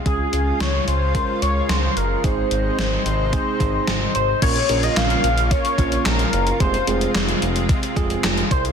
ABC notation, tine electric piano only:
X:1
M:4/4
L:1/16
Q:1/4=110
K:Bbm
V:1 name="Tine electric piano"
[A,DFA]4 z4 [A,DFB]4 z4 | [A,CEA]4 z4 [A,CEA]4 z4 | [B,DFB] z [B,DFB]4 z4 [B,DFd]4 z2 | [A,CFA] z [A,CFA]4 z4 [A,CFA]4 z2 |]